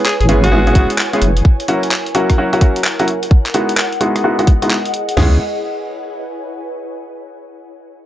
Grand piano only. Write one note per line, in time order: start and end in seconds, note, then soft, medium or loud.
0.29 0.50 G#3 medium
0.29 0.50 B3 medium
0.29 0.50 C#4 medium
0.29 0.50 E4 medium
0.29 0.50 G#4 loud
0.52 0.63 G#3 loud
0.52 0.63 B3 medium
0.52 0.63 C#4 medium
0.52 0.63 E4 medium
0.52 0.63 G#4 loud
0.67 0.74 G#3 medium
0.67 0.74 B3 medium
0.67 0.74 C#4 medium
0.67 0.74 E4 medium
0.67 0.74 G#4 loud
0.75 0.93 G#3 medium
0.75 0.93 B3 medium
0.75 0.93 C#4 medium
0.75 0.93 E4 medium
0.75 0.93 G#4 medium
1.13 1.20 G#3 medium
1.13 1.20 B3 medium
1.13 1.20 C#4 medium
1.13 1.20 E4 medium
1.13 1.20 G#4 loud
1.68 1.86 F#3 medium
1.68 1.86 A#3 medium
1.68 1.86 C#4 medium
1.68 1.86 E4 medium
1.68 1.86 F#4 loud
2.15 2.36 F#3 medium
2.15 2.36 A#3 medium
2.15 2.36 C#4 medium
2.15 2.36 E4 medium
2.15 2.36 F#4 loud
2.38 2.49 F#3 loud
2.38 2.49 A#3 medium
2.38 2.49 C#4 medium
2.38 2.49 E4 medium
2.38 2.49 F#4 loud
2.53 2.60 F#3 medium
2.53 2.60 A#3 medium
2.53 2.60 C#4 medium
2.53 2.60 E4 medium
2.53 2.60 F#4 loud
2.61 2.79 F#3 medium
2.61 2.79 A#3 medium
2.61 2.79 C#4 medium
2.61 2.79 E4 medium
2.61 2.79 F#4 medium
3.00 3.06 F#3 medium
3.00 3.06 A#3 medium
3.00 3.06 C#4 medium
3.00 3.06 E4 medium
3.00 3.06 F#4 loud
3.54 3.72 G#3 medium
3.54 3.72 B3 medium
3.54 3.72 D#4 medium
3.54 3.72 E4 medium
3.54 3.72 F#4 loud
4.01 4.22 G#3 loud
4.01 4.22 B3 medium
4.01 4.22 D#4 medium
4.01 4.22 E4 medium
4.01 4.22 F#4 loud
4.24 4.35 G#3 medium
4.24 4.35 B3 medium
4.24 4.35 D#4 medium
4.24 4.35 E4 medium
4.24 4.35 F#4 loud
4.39 4.46 G#3 medium
4.39 4.46 B3 medium
4.39 4.46 D#4 medium
4.39 4.46 E4 medium
4.39 4.46 F#4 loud
4.62 4.76 G#3 medium
4.62 4.76 B3 medium
4.62 4.76 D#4 medium
4.62 4.76 E4 medium
4.62 4.76 F#4 loud
5.17 5.36 G#3 medium
5.17 5.36 B3 medium
5.17 5.36 C#4 medium
5.17 5.36 E4 medium
5.17 5.36 G#4 medium